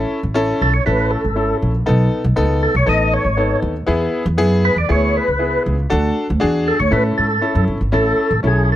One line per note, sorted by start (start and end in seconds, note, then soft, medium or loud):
0.00 0.18 C#4 medium
0.00 0.18 E4 medium
0.00 0.19 A4 medium
0.23 0.51 A1 medium
0.34 0.69 C#4 loud
0.34 0.69 E4 medium
0.34 0.70 A4 loud
0.61 0.79 B1 medium
0.61 0.74 A4 medium
0.74 0.85 C#5 loud
0.86 1.14 A1 medium
0.86 1.20 C#4 medium
0.86 1.20 E4 medium
0.86 1.20 A4 medium
0.86 1.12 B4 loud
1.11 1.57 A4 medium
1.24 1.52 G#1 medium
1.36 1.70 C#4 medium
1.36 1.70 E4 medium
1.36 1.71 A4 medium
1.62 1.80 A#1 medium
1.86 2.06 B1 loud
1.86 2.21 B3 medium
1.86 2.21 D#4 medium
1.86 2.21 A4 loud
2.24 2.34 B1 loud
2.36 2.65 C#2 loud
2.36 2.71 B3 medium
2.36 2.71 D#4 medium
2.36 2.71 A4 loud
2.63 2.75 A4 medium
2.75 2.84 B1 loud
2.75 2.88 C#5 medium
2.86 3.15 A1 loud
2.86 3.21 B3 medium
2.86 3.21 D#4 medium
2.86 3.22 A4 medium
2.86 3.14 D#5 loud
3.14 3.60 C#5 loud
3.25 3.53 G#1 medium
3.37 3.72 B3 medium
3.37 3.72 D#4 medium
3.37 3.72 A4 medium
3.62 3.81 D#2 loud
3.87 4.07 E2 medium
3.87 4.22 B3 medium
3.87 4.22 E4 medium
3.87 4.23 G#4 medium
4.26 4.40 E2 loud
4.38 4.67 F#2 loud
4.38 4.73 B3 medium
4.38 4.73 E4 medium
4.38 4.73 G#4 loud
4.65 4.78 B4 loud
4.76 4.86 E2 medium
4.76 4.90 D5 loud
4.88 5.18 D2 loud
4.88 5.24 B3 medium
4.88 5.24 E4 medium
4.88 5.24 G#4 medium
4.88 5.17 C#5 loud
5.17 5.63 B4 loud
5.28 5.56 C#2 medium
5.39 5.74 B3 medium
5.39 5.74 E4 medium
5.39 5.74 G#4 medium
5.66 5.84 C#2 medium
5.90 6.10 D2 loud
5.90 6.25 D4 medium
5.90 6.25 F#4 medium
5.90 6.25 A4 loud
6.30 6.39 D2 loud
6.40 6.70 E2 loud
6.40 6.75 D4 loud
6.40 6.75 F#4 medium
6.40 6.76 G#4 loud
6.68 6.80 A4 loud
6.80 6.89 D2 loud
6.80 6.92 C#5 medium
6.91 7.10 A2 loud
6.91 7.26 C#4 medium
6.91 7.26 E4 medium
6.91 7.26 A4 medium
6.91 7.04 B4 loud
7.18 7.37 G#2 medium
7.18 7.65 A4 medium
7.41 7.77 C#4 medium
7.41 7.77 E4 medium
7.41 7.77 A4 medium
7.55 7.64 F#2 loud
7.68 7.77 G1 medium
7.81 7.90 G#1 medium
7.92 8.11 A1 loud
7.92 8.27 C#4 medium
7.92 8.27 E4 medium
7.92 8.28 A4 medium
7.92 8.41 A4 loud
8.31 8.40 A1 loud
8.43 8.72 B1 medium
8.43 8.76 C#4 medium
8.43 8.76 E4 medium
8.43 8.76 A4 medium
8.47 8.64 G#4 medium
8.65 8.70 G#4 medium
8.72 8.76 A4 medium